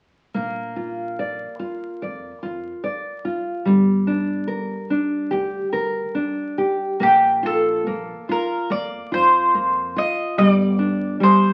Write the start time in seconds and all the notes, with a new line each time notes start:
0.34 A#1 A#3
0.76 F4
1.19 D5
1.59 F4
2.02 F2 D5
2.43 F2 F4
2.84 D5
3.25 F4
3.65 G1 G3
4.07 D4
4.48 A#4
4.90 D4
5.31 D2 G4
5.73 D2 A#4
6.15 D4
6.58 G4
7.00 A#1 A#3 G4
7.43 F4 A4
7.87 A#3
8.29 F4 A#4
8.70 F2 A#3 D5
9.12 F2 F4 C5
9.54 A#3
9.96 F4 D#5
10.38 G1 G3 D5
10.79 D4
11.20 G3 C5